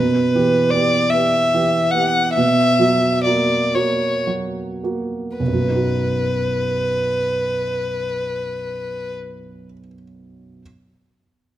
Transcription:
Already playing: B2 B4
0.35 E3 G4
0.71 B3 G4 D5
1.10 B3 E5
1.14 G4
1.54 E3 G4
1.91 B3 G4 F#5
2.34 B2 E5
2.79 F#3 F#4
3.24 A#3 F#4 D5
3.75 A#3 F#4 C#5
4.27 F#3 F#4
4.84 A#3 F#4
5.37 B1 B4
5.48 F#2
5.54 F#3
5.62 B3
5.69 D#4
5.75 F#4

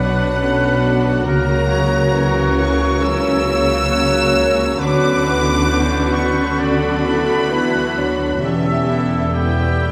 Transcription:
Already playing: B1 B2 F#3 B3 D4 F#4 B4 F#5 F#6
0.17 B4
0.37 C#4 F#4 A4
0.60 B4
0.81 B3 D4
1.03 F#3
1.24 C#2 C#3 F#3 A#3 F#4 A#4 A#5 F#6
1.47 C#4
1.69 F#3 A#4 C#5
1.92 F#4
2.12 E3 F#3 C#4 F#4 C#5 F#6
2.37 F#4
2.56 E3 A#4 C#6
2.80 C#4
3.01 C#3 F#3 A#3 C#4 F#4 C#5 E6
3.25 C#4
3.47 A#3 A#4
3.69 F#4
3.89 F#3 C#4 A#4 C#5 F#6
4.13 F#4
4.34 C#4 A#4
4.57 C#4
4.78 D2 D3 F#3 B3 F#4 B4 D6 F#6
4.82 F#4 B4
5.01 B3
5.24 E3 B4
5.47 F#4
5.68 B3 F#4 A4 B4 G6
5.92 F#4
6.14 C#6
6.38 B3
6.59 D3 B3 F#4 D5 B5 F#6
6.82 F#3
7.05 D3 E4 B4
7.50 E3 B3 D4 E4 F#4 B4
7.74 F#4
7.96 F#3 D4 B4
8.19 B3
8.41 E1 E2 E3 G3 B3 C#4 G4 A4 E5 E6
8.64 C#4
8.87 G3 E4 B4
9.10 G4
9.33 A3 B3 E4 G4 B4 C#5 G5 E6
9.58 G4
9.83 G3 B3 B4

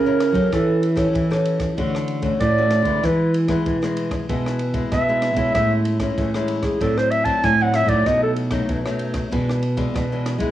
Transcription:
Already playing: C#3 A#4
0.06 C#4 E4 A#4
0.20 cross-stick, ride
0.32 F#3 C#4 G4 A4, kick, ride
0.52 E3 A4, kick, cross-stick, ride
0.83 ride
0.96 C#4 G4 A4, kick, cross-stick, ride
1.13 E3, kick, ride
1.30 C#4 G4 A4, cross-stick
1.45 ride
1.60 kick, cross-stick, ride
1.77 D3 A3 C#4 F#4, kick, ride
1.95 cross-stick
2.08 ride
2.22 A3 C#4 F#4, kick, ride
2.40 A2 D5, kick, cross-stick, ride
2.58 A3 C#4 F#4
2.71 cross-stick, ride
2.82 D3 G#3 B3 E4, kick, ride
3.03 E3 B4, kick, cross-stick, ride
3.34 ride
3.48 G#3 B3 E4, kick, cross-stick, ride
3.65 B2 E3, kick, ride
3.82 G#3 B3 E4, cross-stick
3.97 ride
4.11 kick, cross-stick, ride
4.29 B2 E3 G#3 B3 E4, kick, ride
4.46 cross-stick
4.59 ride
4.74 G#3 B3 E4, kick, ride
4.92 B2 E5, kick, cross-stick, ride
5.09 G#3 B3 E4
5.22 cross-stick, ride
5.34 B2 G#3 C#4 E4, kick, ride
5.55 A2 E5, kick, cross-stick, ride
5.85 ride
6.00 G#3 C#4 E4, kick, cross-stick, ride
6.18 A2 E3, kick, ride
6.35 G#3 C#4 E4, cross-stick
6.48 ride
6.63 G#4, kick, cross-stick, ride
6.80 A2 F#3 C4 D4 A4, kick, ride
6.98 C5, cross-stick
7.11 E5, ride
7.25 F#3 C4 D4 A5, kick, ride
7.43 A2 G#5, kick, cross-stick, ride
7.60 F#3 C4 D4 F#5
7.74 E5, cross-stick, ride
7.86 A2 F#3 A3 D#4 D5, kick, ride
8.06 B2 D#5, kick, cross-stick, ride
8.23 A4
8.36 ride
8.51 F#3 A3 D#4, kick, cross-stick, ride
8.69 F#2 B2, kick, ride
8.85 F#3 A3 D#4, cross-stick
8.99 ride
9.14 kick, cross-stick, ride
9.31 B2 E3 G#3 D4, kick, ride
9.49 cross-stick
9.62 ride
9.77 E3 G#3 D4, kick, ride
9.94 B2, kick, cross-stick, ride
10.12 E3 G#3 D4
10.26 cross-stick, ride
10.40 G#3 B3 E4, kick, ride

